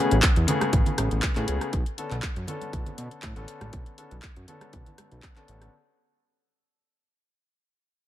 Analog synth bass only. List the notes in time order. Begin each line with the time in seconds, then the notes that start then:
0.12 A1
0.37 E2
0.73 A1
0.98 A1
1.12 A1
1.37 A2
1.48 C#2
1.73 B1
2.11 B1
2.36 F#2
2.73 B1
2.98 B2
3.23 A2
3.36 A1
3.61 A1
3.73 B1
4.12 B1
4.37 F#2
4.74 B1
5.12 B1
5.49 A1